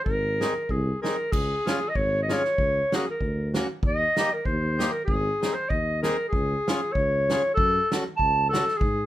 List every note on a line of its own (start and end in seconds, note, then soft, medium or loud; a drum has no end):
0.05 0.47 G#1 medium
0.05 0.72 A#4 medium
0.05 kick medium
0.41 0.54 C4 medium
0.41 0.54 D#4 medium
0.41 0.54 G#4 medium
0.41 snare medium
0.69 0.92 C2 medium
0.69 1.01 G#4 medium
0.69 kick medium
1.02 1.16 C4 medium
1.02 1.16 D#4 soft
1.02 1.16 G#4 medium
1.02 1.33 A#4 medium
1.02 snare medium
1.32 1.55 C#2 medium
1.32 1.91 G#4 medium
1.32 kick medium
1.32 crash medium
1.66 1.80 C#4 medium
1.66 1.80 F4 medium
1.66 1.80 G#4 medium
1.66 snare medium
1.66 hi-hat pedal soft
1.89 1.97 D#5 medium
1.95 2.36 G#1 medium
1.95 2.22 C#5 medium
1.95 kick medium
2.23 2.35 D#5 medium
2.29 2.43 C#4 medium
2.29 2.43 F4 soft
2.29 2.42 G#4 medium
2.29 snare medium
2.29 hi-hat pedal soft
2.34 2.97 C#5 medium
2.44 snare soft
2.58 2.81 C#2 medium
2.58 kick medium
2.92 3.05 A#3 medium
2.92 3.05 C#4 medium
2.92 3.06 F#4 medium
2.92 3.08 G#4 medium
2.92 snare medium
2.92 hi-hat pedal soft
3.11 3.54 A#4 medium
3.21 3.61 D2 medium
3.21 kick medium
3.54 3.67 A#3 medium
3.54 3.67 C#4 medium
3.54 3.67 F#4 medium
3.54 snare medium
3.54 hi-hat pedal soft
3.83 4.05 D#2 medium
3.83 kick medium
3.87 4.35 D#5 medium
4.17 4.30 A#3 medium
4.17 4.30 D#4 medium
4.17 4.30 G4 medium
4.17 snare medium
4.17 hi-hat pedal medium
4.33 4.47 A#4 medium
4.45 4.87 D#2 medium
4.45 4.94 C5 medium
4.45 kick medium
4.78 4.92 A#3 medium
4.78 4.92 D#4 medium
4.78 4.92 G4 medium
4.78 snare medium
4.78 hi-hat pedal soft
4.92 5.04 A#4 medium
5.05 5.30 G#1 medium
5.05 5.55 G#4 medium
5.05 kick medium
5.41 5.54 C4 medium
5.41 5.55 D#4 medium
5.41 5.54 G#4 medium
5.41 snare medium
5.41 hi-hat pedal medium
5.53 5.71 C5 medium
5.69 6.11 D#2 medium
5.69 6.02 D#5 medium
5.69 kick medium
6.02 6.17 C4 medium
6.02 6.17 D#4 soft
6.02 6.17 G#4 medium
6.02 6.28 A#4 medium
6.02 snare medium
6.02 hi-hat pedal soft
6.29 6.94 G#4 medium
6.33 6.55 C#2 medium
6.33 kick medium
6.68 6.80 C#4 medium
6.68 6.81 F4 medium
6.68 6.81 G#4 medium
6.68 snare medium
6.68 hi-hat pedal soft
6.92 7.36 C#2 medium
6.92 7.54 C#5 medium
6.92 kick medium
7.30 7.43 C#4 medium
7.30 7.42 F4 medium
7.30 7.42 G#4 medium
7.30 snare medium
7.30 hi-hat pedal soft
7.54 7.79 F#2 medium
7.54 7.91 A4 loud
7.54 kick medium
7.91 8.04 C#4 medium
7.91 8.04 F#4 medium
7.91 8.04 A4 medium
7.91 snare medium
7.91 hi-hat pedal soft
8.17 8.60 C#2 medium
8.17 8.49 A5 medium
8.17 kick medium
8.50 8.65 C#4 medium
8.50 8.65 F#4 medium
8.50 8.78 A4 medium
8.50 8.65 A4 medium
8.50 snare medium
8.50 hi-hat pedal soft
8.68 snare soft
8.77 9.06 G#4 medium
8.81 9.03 G#2 medium
8.81 kick medium